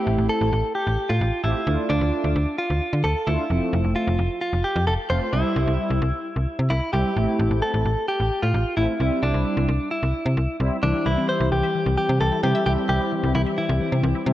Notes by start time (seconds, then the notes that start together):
Already playing: A3 C4 E4 G4
0.07 A1
0.18 A1
0.29 A4
0.41 A1
0.52 A1
0.75 G4
0.87 A1
1.09 A2 F4
1.21 A1
1.44 A1 A3 C4 E4 G4
1.67 D2 A3 D4 F4
1.90 D2 D4
2.01 D2
2.24 D2
2.36 D2
2.58 F4
2.70 D2
2.93 D3
3.04 D2 A4
3.27 D2 A3 D4 E4 F4
3.50 F1 F3 A3 C4
3.73 F1
3.84 F1
3.96 F4
4.07 F1
4.19 F1
4.41 F4
4.53 F1
4.64 G4
4.76 F2
4.87 F1 A4
5.10 F1 A3 C4 F4 C5
5.33 C2 G3 C4 E4
5.56 C2
5.68 C2
5.90 C2
6.02 C2
6.36 C2
6.59 C3
6.70 C2 E4
6.93 C2 G3 C4 E4 G4
7.16 A1 A3 C4 E4
7.39 A1
7.51 A1
7.62 A4
7.74 A1
7.85 A1
8.08 G4
8.20 A1
8.42 A2 F4
8.54 A1
8.77 A1 A3 C4 E4
9.00 C2 G3 C4 E4
9.22 C2 D4
9.34 C2
9.57 C2
9.68 C2
9.91 E4
10.03 C2
10.26 C3
10.37 C2
10.60 C2 G3 C4 E4
10.83 C2 E3 G3 C4 D4 E4 G4
10.94 G3
11.06 C2 E3 E4
11.17 C4
11.29 E3 C5
11.40 C2 E4
11.52 C2 E3 G4
11.63 E5
11.75 E3
11.86 C2 G3
11.97 E3 G4
12.09 C3 C4
12.20 C2 E3 A4
12.32 E4
12.43 C3 E3 G3 C4 E4 G4
12.55 E5
12.66 C2 E3 G3 C4 E4 G4
12.78 G3
12.89 C2 E3 G4
13.01 C4
13.12 E3
13.23 C2 E4
13.35 C2 E3 E4
13.46 E5
13.58 E3 E4
13.69 C2 G3
13.81 E3
13.92 C3 C4
14.04 C2 E3
14.15 E4
14.26 C3 E3 G3 C4 E4